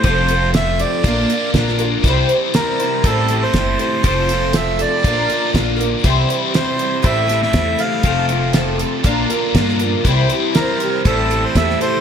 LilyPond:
<<
  \new Staff \with { instrumentName = "Accordion" } { \time 4/4 \key c \mixolydian \tempo 4 = 120 c''4 e''8 d''4. r4 | r4 bes'4 a'8. c''8. c''8 | c''4 e''8 d''4. r4 | r4 c''4 e''8. e''8. f''8~ |
f''8 r2. r8 | r4 bes'4 a'8. c''16 e''8 c''8 | }
  \new Staff \with { instrumentName = "Twelve-string acoustic guitar" } { \time 4/4 \key c \mixolydian <f a c' f' a'>8 <c' f' a'>8 <a c' f' a'>8 <c' f' a'>8 <bes, f bes d' f' bes'>8 <bes d' f' bes'>8 <bes d' f' bes'>8 <bes d' f' bes'>8 | <c e g c' e' c''>8 <g c' e' c''>8 <g c' e' c''>8 <g c' e' c''>8 <a, e g c' e' a'>8 <g c' e' a'>8 <g c' e' a'>8 <g c' e' a'>8 | <f a c' f' a'>8 <c' f' a'>8 <a c' f' a'>8 <c' f' a'>8 <bes, f bes d' f' bes'>8 <bes d' f' bes'>8 <bes d' f' bes'>8 <bes d' f' bes'>8 | <c e g c' e' c''>8 <g c' e' c''>8 <g c' e' c''>8 <g c' e' c''>8 <a, e g c' e' a'>8 <g c' e' a'>8 <g c' e' a'>8 <g c' e' a'>8 |
<f a c' f' a'>8 <c' f' a'>8 <a c' f' a'>8 <c' f' a'>8 <bes, f bes d' f' bes'>8 <bes d' f' bes'>8 <bes d' f' bes'>8 <bes d' f' bes'>8 | <c e g c' e' c''>8 <g c' e' c''>8 <g c' e' c''>8 <g c' e' c''>8 <a, e g c' e' a'>8 <g c' e' a'>8 <g c' e' a'>8 <g c' e' a'>8 | }
  \new Staff \with { instrumentName = "Overdriven electric guitar" } { \time 4/4 \key c \mixolydian <f, c f a c' f'>2 <bes, d bes d' f'>2 | <c e g c' e'>2 <a, e a c' e'>2 | <f, c f a c' f'>2 <bes, d bes d' f'>2 | <c e g c' e'>2 <a, e a c' e'>2 |
<f, c f a c' f'>2 <bes, d bes d' f'>2 | <c e g c' e'>2 <a, e a c' e'>2 | }
  \new Staff \with { instrumentName = "Upright bass" } { \clef bass \time 4/4 \key c \mixolydian f,,2 bes,,8 r8 bes,,4 | c,8 r4. a,,4 fis,,8 r8 | f,,2 bes,,8 r8 bes,,4 | c,8 r4. a,,4 e,8 r8 |
f,,2 bes,,8 r8 g,4 | c,8 r4. a,,4 e,8 r8 | }
  \new DrumStaff \with { instrumentName = "Drums" } \drummode { \time 4/4 <hh bd>8 hh8 <hh sn>8 hh8 <hh bd>8 hh8 <hh bd sn>16 sn16 hh8 | <hh bd>8 hh8 <hh sn>8 hh8 <hh bd>8 hh8 <hh bd sn>8 hh8 | <hh bd>8 hh8 <hh sn>8 hh8 <hh bd>8 hh8 <hh bd sn>8 hh8 | <hh bd>8 hh8 <hh sn>8 hh8 <hh bd>8 <hh sn>16 sn16 <hh bd sn>8 hh8 |
<hh bd>8 hh8 <hh sn>8 hh8 <hh bd>8 hh8 <hh bd sn>16 sn16 hh8 | <hh bd>8 hh8 <hh sn>8 hh8 <hh bd>8 hh8 <hh bd sn>16 sn16 hh8 | }
>>